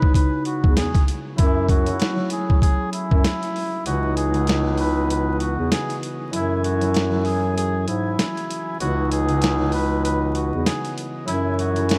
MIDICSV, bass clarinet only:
0, 0, Header, 1, 2, 480
1, 0, Start_track
1, 0, Key_signature, 4, "minor"
1, 0, Tempo, 618557
1, 1076, Time_signature, 4, 2, 24, 8
1, 9300, End_track
2, 0, Start_track
2, 0, Title_t, "Bass clarinet"
2, 0, Program_c, 0, 71
2, 496, Note_on_c, 0, 40, 85
2, 716, Note_off_c, 0, 40, 0
2, 1077, Note_on_c, 0, 42, 107
2, 1526, Note_off_c, 0, 42, 0
2, 2417, Note_on_c, 0, 42, 91
2, 2508, Note_off_c, 0, 42, 0
2, 2996, Note_on_c, 0, 37, 111
2, 4304, Note_off_c, 0, 37, 0
2, 4337, Note_on_c, 0, 40, 98
2, 4428, Note_off_c, 0, 40, 0
2, 4917, Note_on_c, 0, 42, 114
2, 6085, Note_off_c, 0, 42, 0
2, 6116, Note_on_c, 0, 44, 93
2, 6336, Note_off_c, 0, 44, 0
2, 6836, Note_on_c, 0, 37, 114
2, 8144, Note_off_c, 0, 37, 0
2, 8176, Note_on_c, 0, 40, 98
2, 8268, Note_off_c, 0, 40, 0
2, 8756, Note_on_c, 0, 42, 110
2, 9300, Note_off_c, 0, 42, 0
2, 9300, End_track
0, 0, End_of_file